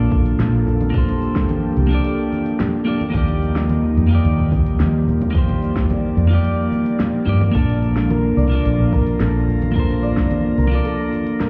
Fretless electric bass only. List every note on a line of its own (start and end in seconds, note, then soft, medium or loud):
0.00 0.33 A#1 medium
0.39 1.44 A#1 medium
1.77 1.98 C2 medium
3.14 3.91 D#2 loud
3.97 4.18 F2 medium
4.25 4.74 D#2 medium
4.80 5.84 D#2 medium
6.17 6.38 F2 medium
7.27 7.48 G2 medium
7.55 8.32 A#1 loud
8.37 8.58 C2 medium
8.65 9.14 A#1 loud
9.21 10.25 A#1 medium
10.58 10.78 C2 medium